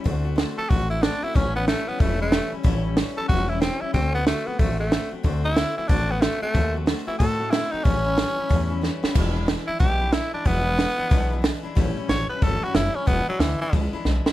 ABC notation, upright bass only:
X:1
M:4/4
L:1/8
Q:"Swing" 1/4=184
K:Amix
V:1 name="Upright bass" clef=bass
D,,3 z A,,,3 z | A,,,3 z E,,,3 z | A,,,3 z E,,,3 z | D,,3 z A,,,3 z |
D,,3 z A,,,3 z | ^D,,3 z A,,3 z | A,,,3 z E,,3 z | E,,,3 z B,,,3 z |
E,,,3 z B,,,3 z | A,,, z A,,, z G,,, z F,,, z | E,,, z D,, z C,, z B,,, z |]